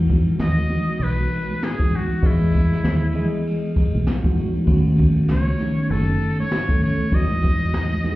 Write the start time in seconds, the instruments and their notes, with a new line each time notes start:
Already playing: fingered electric bass E2, tine electric piano E3 G#3 B3 D#4 F#4
0.07 kick, ride, low conga, shaker
0.28 shaker
0.39 fingered electric bass D#2, muted trumpet D#5, snare, hi-hat pedal, ride, shaker
0.58 high conga, shaker
0.68 tine electric piano E3 G#3 B3 D#4 F#4, ride, low conga, shaker
0.89 ride, shaker
0.99 fingered electric bass B1, muted trumpet B4, ride, shaker
1.21 shaker
1.32 ride, shaker
1.50 high conga, shaker
1.61 muted trumpet G#4, snare, hi-hat pedal, ride, shaker
1.79 tine electric piano E3 G#3 B3 D#4 F#4, kick, shaker
1.91 ride, high conga, low conga, shaker
1.96 muted trumpet F#4
2.10 shaker
2.22 fingered electric bass E2, tine electric piano E3 G#3 B3 G#4 D#5, kick, ride, shaker
2.26 muted trumpet E4
2.41 high conga, shaker
2.51 kick, ride, low conga, shaker
2.72 snare, shaker
2.84 fingered electric bass D#2, snare, hi-hat pedal, ride, shaker
3.02 high conga, shaker
3.12 tine electric piano E3 G#3 B3 G#4 D#5, ride, low conga, shaker
3.33 ride, shaker
3.44 ride, shaker
3.65 shaker
3.76 kick, ride, shaker
3.94 fingered electric bass B1, high conga, shaker
4.06 snare, hi-hat pedal, ride, shaker
4.24 tine electric piano E3 G#3 B3 D#4 F#4, kick, shaker
4.37 ride, high conga, low conga, shaker
4.56 shaker
4.66 fingered electric bass D#2, tine electric piano D#3 A3 B3 C#4 F#4, kick, ride, shaker
4.87 high conga, shaker
4.96 kick, ride, low conga, shaker
5.17 shaker
5.28 fingered electric bass C#2, muted trumpet C#5, snare, hi-hat pedal, ride
5.47 high conga, shaker
5.57 tine electric piano D#3 A3 B3 C#4 D#4, snare, ride, low conga, shaker
5.78 shaker
5.89 fingered electric bass F#1, muted trumpet A4, ride, shaker
6.09 shaker
6.21 ride, shaker
6.40 muted trumpet C#5, high conga, shaker
6.51 snare, hi-hat pedal, ride, shaker
6.68 tine electric piano D#3 A3 B3 C#4 A4, kick, shaker
6.81 muted trumpet C#5, ride, high conga, low conga, shaker
7.00 shaker
7.10 fingered electric bass E2, tine electric piano E3 G#3 B3 D#4 F#4, kick, ride, shaker
7.15 muted trumpet D#5
7.30 high conga, shaker
7.41 kick, ride, low conga, shaker
7.62 shaker
7.73 snare, hi-hat pedal, ride
7.92 high conga, shaker
8.02 tine electric piano E3 G#3 B3 D#4 F#4, snare, ride, low conga, shaker
8.12 tine electric piano G#4